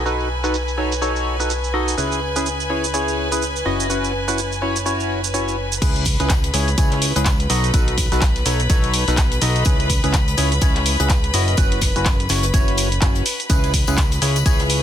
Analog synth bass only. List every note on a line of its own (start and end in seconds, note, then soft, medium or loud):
0.00 1.96 B1 medium
1.98 3.64 C#2 medium
3.66 5.80 F#1 medium
5.82 6.17 C#2 loud
6.20 6.52 C#2 loud
6.54 6.76 C#2 loud
6.78 7.13 C#2 medium
7.16 7.48 C#2 loud
7.50 7.72 B1 loud
7.74 8.09 B1 loud
8.12 8.44 B1 loud
8.46 8.68 B1 medium
8.70 9.05 B1 medium
9.08 9.40 B1 loud
9.42 9.64 B1 loud
9.66 10.01 C#2 loud
10.04 10.36 C#2 loud
10.38 10.60 C#2 loud
10.62 10.97 C#2 medium
11.00 11.32 C#2 loud
11.34 11.56 F#1 loud
11.58 11.93 F#1 loud
11.96 12.28 F#1 loud
12.30 12.52 F#1 loud
12.54 13.00 F#1 medium
13.02 13.22 F#1 medium
13.50 13.85 C#2 loud
13.88 14.20 C#2 loud
14.22 14.44 C#2 loud
14.46 14.81 C#2 medium